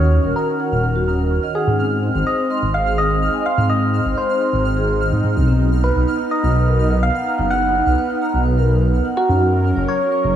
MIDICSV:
0, 0, Header, 1, 6, 480
1, 0, Start_track
1, 0, Tempo, 476190
1, 1804, Time_signature, 4, 2, 24, 8
1, 10442, End_track
2, 0, Start_track
2, 0, Title_t, "Synth texture"
2, 0, Program_c, 0, 99
2, 0, Note_on_c, 0, 89, 85
2, 10442, Note_off_c, 0, 89, 0
2, 10442, End_track
3, 0, Start_track
3, 0, Title_t, "Soft synth lead"
3, 0, Program_c, 1, 80
3, 0, Note_on_c, 1, 73, 104
3, 362, Note_on_c, 1, 70, 88
3, 377, Note_off_c, 1, 73, 0
3, 843, Note_off_c, 1, 70, 0
3, 1563, Note_on_c, 1, 68, 94
3, 2244, Note_off_c, 1, 68, 0
3, 2285, Note_on_c, 1, 75, 100
3, 2731, Note_off_c, 1, 75, 0
3, 2764, Note_on_c, 1, 77, 111
3, 3005, Note_on_c, 1, 75, 113
3, 3020, Note_off_c, 1, 77, 0
3, 3487, Note_on_c, 1, 77, 102
3, 3502, Note_off_c, 1, 75, 0
3, 3725, Note_on_c, 1, 75, 106
3, 3740, Note_off_c, 1, 77, 0
3, 4208, Note_on_c, 1, 72, 87
3, 4224, Note_off_c, 1, 75, 0
3, 4686, Note_off_c, 1, 72, 0
3, 5885, Note_on_c, 1, 71, 91
3, 6331, Note_off_c, 1, 71, 0
3, 6363, Note_on_c, 1, 75, 102
3, 7085, Note_on_c, 1, 77, 108
3, 7100, Note_off_c, 1, 75, 0
3, 7558, Note_off_c, 1, 77, 0
3, 7564, Note_on_c, 1, 78, 108
3, 8484, Note_off_c, 1, 78, 0
3, 9245, Note_on_c, 1, 66, 98
3, 9924, Note_off_c, 1, 66, 0
3, 9964, Note_on_c, 1, 73, 105
3, 10442, Note_off_c, 1, 73, 0
3, 10442, End_track
4, 0, Start_track
4, 0, Title_t, "Vibraphone"
4, 0, Program_c, 2, 11
4, 124, Note_on_c, 2, 61, 74
4, 170, Note_off_c, 2, 61, 0
4, 244, Note_on_c, 2, 70, 77
4, 351, Note_off_c, 2, 70, 0
4, 363, Note_on_c, 2, 70, 101
4, 440, Note_off_c, 2, 70, 0
4, 484, Note_on_c, 2, 61, 76
4, 598, Note_off_c, 2, 61, 0
4, 603, Note_on_c, 2, 78, 97
4, 680, Note_off_c, 2, 78, 0
4, 843, Note_on_c, 2, 70, 82
4, 920, Note_off_c, 2, 70, 0
4, 963, Note_on_c, 2, 66, 102
4, 1040, Note_off_c, 2, 66, 0
4, 1084, Note_on_c, 2, 61, 75
4, 1130, Note_off_c, 2, 61, 0
4, 1203, Note_on_c, 2, 70, 75
4, 1318, Note_off_c, 2, 70, 0
4, 1445, Note_on_c, 2, 75, 100
4, 1521, Note_off_c, 2, 75, 0
4, 1564, Note_on_c, 2, 78, 98
4, 1641, Note_off_c, 2, 78, 0
4, 1685, Note_on_c, 2, 61, 74
4, 1761, Note_off_c, 2, 61, 0
4, 1805, Note_on_c, 2, 60, 81
4, 1881, Note_off_c, 2, 60, 0
4, 2044, Note_on_c, 2, 60, 76
4, 2090, Note_off_c, 2, 60, 0
4, 2164, Note_on_c, 2, 72, 77
4, 2272, Note_off_c, 2, 72, 0
4, 2284, Note_on_c, 2, 72, 101
4, 2361, Note_off_c, 2, 72, 0
4, 2405, Note_on_c, 2, 60, 74
4, 2519, Note_off_c, 2, 60, 0
4, 2525, Note_on_c, 2, 84, 96
4, 2601, Note_off_c, 2, 84, 0
4, 2764, Note_on_c, 2, 72, 82
4, 2841, Note_off_c, 2, 72, 0
4, 2884, Note_on_c, 2, 68, 102
4, 2961, Note_off_c, 2, 68, 0
4, 3004, Note_on_c, 2, 60, 76
4, 3050, Note_off_c, 2, 60, 0
4, 3124, Note_on_c, 2, 72, 76
4, 3238, Note_off_c, 2, 72, 0
4, 3365, Note_on_c, 2, 80, 99
4, 3441, Note_off_c, 2, 80, 0
4, 3484, Note_on_c, 2, 84, 101
4, 3561, Note_off_c, 2, 84, 0
4, 3604, Note_on_c, 2, 60, 76
4, 3681, Note_off_c, 2, 60, 0
4, 3724, Note_on_c, 2, 60, 83
4, 3801, Note_off_c, 2, 60, 0
4, 3965, Note_on_c, 2, 60, 75
4, 4010, Note_off_c, 2, 60, 0
4, 4085, Note_on_c, 2, 72, 77
4, 4192, Note_off_c, 2, 72, 0
4, 4204, Note_on_c, 2, 72, 98
4, 4281, Note_off_c, 2, 72, 0
4, 4325, Note_on_c, 2, 60, 73
4, 4439, Note_off_c, 2, 60, 0
4, 4444, Note_on_c, 2, 84, 96
4, 4521, Note_off_c, 2, 84, 0
4, 4684, Note_on_c, 2, 72, 83
4, 4761, Note_off_c, 2, 72, 0
4, 4804, Note_on_c, 2, 68, 100
4, 4881, Note_off_c, 2, 68, 0
4, 4924, Note_on_c, 2, 72, 76
4, 5001, Note_off_c, 2, 72, 0
4, 5045, Note_on_c, 2, 60, 74
4, 5159, Note_off_c, 2, 60, 0
4, 5285, Note_on_c, 2, 63, 74
4, 5399, Note_off_c, 2, 63, 0
4, 5404, Note_on_c, 2, 60, 76
4, 5512, Note_off_c, 2, 60, 0
4, 5524, Note_on_c, 2, 60, 101
4, 5601, Note_off_c, 2, 60, 0
4, 5645, Note_on_c, 2, 63, 80
4, 5721, Note_off_c, 2, 63, 0
4, 5885, Note_on_c, 2, 63, 78
4, 5931, Note_off_c, 2, 63, 0
4, 6005, Note_on_c, 2, 71, 76
4, 6112, Note_off_c, 2, 71, 0
4, 6124, Note_on_c, 2, 71, 99
4, 6201, Note_off_c, 2, 71, 0
4, 6244, Note_on_c, 2, 63, 74
4, 6358, Note_off_c, 2, 63, 0
4, 6364, Note_on_c, 2, 82, 99
4, 6441, Note_off_c, 2, 82, 0
4, 6605, Note_on_c, 2, 71, 83
4, 6681, Note_off_c, 2, 71, 0
4, 6724, Note_on_c, 2, 70, 98
4, 6801, Note_off_c, 2, 70, 0
4, 6845, Note_on_c, 2, 63, 76
4, 6890, Note_off_c, 2, 63, 0
4, 6964, Note_on_c, 2, 71, 73
4, 7078, Note_off_c, 2, 71, 0
4, 7204, Note_on_c, 2, 78, 100
4, 7281, Note_off_c, 2, 78, 0
4, 7324, Note_on_c, 2, 82, 100
4, 7401, Note_off_c, 2, 82, 0
4, 7444, Note_on_c, 2, 63, 76
4, 7520, Note_off_c, 2, 63, 0
4, 7564, Note_on_c, 2, 63, 81
4, 7641, Note_off_c, 2, 63, 0
4, 7804, Note_on_c, 2, 63, 78
4, 7850, Note_off_c, 2, 63, 0
4, 7924, Note_on_c, 2, 71, 76
4, 8031, Note_off_c, 2, 71, 0
4, 8044, Note_on_c, 2, 71, 100
4, 8121, Note_off_c, 2, 71, 0
4, 8163, Note_on_c, 2, 63, 77
4, 8278, Note_off_c, 2, 63, 0
4, 8283, Note_on_c, 2, 82, 99
4, 8360, Note_off_c, 2, 82, 0
4, 8522, Note_on_c, 2, 71, 82
4, 8600, Note_off_c, 2, 71, 0
4, 8643, Note_on_c, 2, 70, 99
4, 8720, Note_off_c, 2, 70, 0
4, 8763, Note_on_c, 2, 63, 77
4, 8810, Note_off_c, 2, 63, 0
4, 8883, Note_on_c, 2, 71, 74
4, 8997, Note_off_c, 2, 71, 0
4, 9123, Note_on_c, 2, 78, 102
4, 9200, Note_off_c, 2, 78, 0
4, 9243, Note_on_c, 2, 82, 100
4, 9320, Note_off_c, 2, 82, 0
4, 9362, Note_on_c, 2, 63, 75
4, 9440, Note_off_c, 2, 63, 0
4, 9482, Note_on_c, 2, 61, 82
4, 9560, Note_off_c, 2, 61, 0
4, 9722, Note_on_c, 2, 61, 76
4, 9769, Note_off_c, 2, 61, 0
4, 9842, Note_on_c, 2, 73, 77
4, 9950, Note_off_c, 2, 73, 0
4, 9962, Note_on_c, 2, 73, 102
4, 10040, Note_off_c, 2, 73, 0
4, 10082, Note_on_c, 2, 61, 77
4, 10197, Note_off_c, 2, 61, 0
4, 10202, Note_on_c, 2, 85, 100
4, 10280, Note_off_c, 2, 85, 0
4, 10442, End_track
5, 0, Start_track
5, 0, Title_t, "Analog synth pad"
5, 0, Program_c, 3, 89
5, 0, Note_on_c, 3, 51, 77
5, 0, Note_on_c, 3, 61, 71
5, 0, Note_on_c, 3, 66, 85
5, 1766, Note_off_c, 3, 51, 0
5, 1766, Note_off_c, 3, 61, 0
5, 1766, Note_off_c, 3, 66, 0
5, 1804, Note_on_c, 3, 60, 72
5, 1804, Note_on_c, 3, 63, 89
5, 1805, Note_on_c, 3, 56, 81
5, 5606, Note_off_c, 3, 56, 0
5, 5606, Note_off_c, 3, 60, 0
5, 5644, Note_on_c, 3, 59, 72
5, 9444, Note_off_c, 3, 63, 0
5, 9446, Note_off_c, 3, 59, 0
5, 9484, Note_on_c, 3, 70, 88
5, 9485, Note_on_c, 3, 54, 78
5, 9485, Note_on_c, 3, 61, 71
5, 10442, Note_off_c, 3, 54, 0
5, 10442, Note_off_c, 3, 61, 0
5, 10442, Note_off_c, 3, 70, 0
5, 10442, End_track
6, 0, Start_track
6, 0, Title_t, "Detuned saw bass"
6, 0, Program_c, 4, 39
6, 0, Note_on_c, 4, 39, 82
6, 192, Note_off_c, 4, 39, 0
6, 244, Note_on_c, 4, 27, 99
6, 332, Note_off_c, 4, 27, 0
6, 724, Note_on_c, 4, 27, 88
6, 1392, Note_off_c, 4, 27, 0
6, 1684, Note_on_c, 4, 44, 82
6, 2112, Note_off_c, 4, 44, 0
6, 2164, Note_on_c, 4, 32, 101
6, 2252, Note_off_c, 4, 32, 0
6, 2643, Note_on_c, 4, 32, 87
6, 3312, Note_off_c, 4, 32, 0
6, 3604, Note_on_c, 4, 44, 84
6, 4032, Note_off_c, 4, 44, 0
6, 4084, Note_on_c, 4, 32, 101
6, 4172, Note_off_c, 4, 32, 0
6, 4564, Note_on_c, 4, 32, 88
6, 5157, Note_off_c, 4, 32, 0
6, 5163, Note_on_c, 4, 44, 94
6, 5251, Note_off_c, 4, 44, 0
6, 5284, Note_on_c, 4, 44, 91
6, 5403, Note_on_c, 4, 35, 103
6, 5418, Note_off_c, 4, 44, 0
6, 5952, Note_off_c, 4, 35, 0
6, 6004, Note_on_c, 4, 35, 100
6, 6092, Note_off_c, 4, 35, 0
6, 6484, Note_on_c, 4, 35, 88
6, 7152, Note_off_c, 4, 35, 0
6, 7445, Note_on_c, 4, 30, 82
6, 7872, Note_off_c, 4, 30, 0
6, 7923, Note_on_c, 4, 35, 97
6, 8011, Note_off_c, 4, 35, 0
6, 8403, Note_on_c, 4, 35, 86
6, 9072, Note_off_c, 4, 35, 0
6, 9363, Note_on_c, 4, 42, 81
6, 9791, Note_off_c, 4, 42, 0
6, 9843, Note_on_c, 4, 30, 100
6, 9931, Note_off_c, 4, 30, 0
6, 10324, Note_on_c, 4, 30, 87
6, 10442, Note_off_c, 4, 30, 0
6, 10442, End_track
0, 0, End_of_file